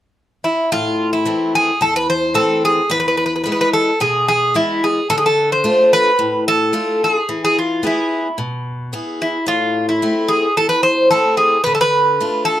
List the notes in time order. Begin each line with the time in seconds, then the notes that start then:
0.44 E4
0.72 A2 F4
1.13 E4
1.25 E3 A3 C4
1.55 G#4
1.81 E2 A4
1.96 B4
2.10 C5
2.34 E3 A3 C4 A4
2.65 G#4
2.90 E2 B4
3.00 B4
3.08 B4
3.17 B4
3.26 B4
3.36 B4
3.44 E3 G#3 B3 B4
3.52 B4
3.61 B4
3.73 A4
4.00 B2 G#4
4.28 G#4
4.54 E3 G#3 B3 E4
4.84 G#4
5.10 D3 A4
5.18 G#4
5.26 A4
5.52 C5
5.64 A3 D4 F4
5.93 B4
6.19 A2
6.48 A4
6.73 A3 D4 F4
7.04 G#4
7.29 E3
7.45 G#4
7.59 F4
7.83 B3 E4 G#4
8.38 B2
8.93 B3 E4 G#4
9.22 E4
9.46 A2 F4
9.89 E4
10.02 A3 C4 E4
10.28 G#4
10.57 E2 A4
10.69 B4
10.83 C5
11.11 A3 C4 E4 A4
11.37 G#4
11.64 D3 B4
11.75 A4
11.81 B4
12.21 A3 D4 F4
12.45 A4